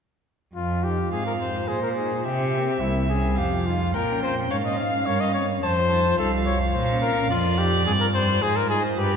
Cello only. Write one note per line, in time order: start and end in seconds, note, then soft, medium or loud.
0.55 1.08 F2 medium
1.12 1.68 G#2 medium
1.69 2.24 A#2 medium
2.25 2.81 C3 medium
2.81 3.40 C2 medium
3.38 3.96 F2 medium
3.95 4.50 A#2 medium
4.50 5.06 G#2 medium
5.06 5.62 G2 medium
5.63 6.18 F2 medium
6.19 6.74 C2 medium
6.74 7.29 A#2 medium
7.30 7.88 F2 medium
7.86 8.42 G2 medium
8.42 8.97 G#2 medium
8.98 9.16 G2 medium